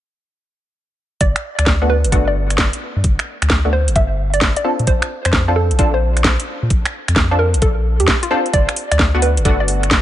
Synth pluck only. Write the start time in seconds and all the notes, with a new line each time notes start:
1.21 D5
1.59 D5
1.90 B4
2.28 D5
3.73 C5
3.96 E5
4.34 D5
4.57 D5
4.87 C5
5.25 C5
5.56 A4
5.94 C5
7.39 A#4
7.62 A4
8.00 G4
8.23 F4
8.53 D5
8.91 D5
9.22 B4
9.60 D5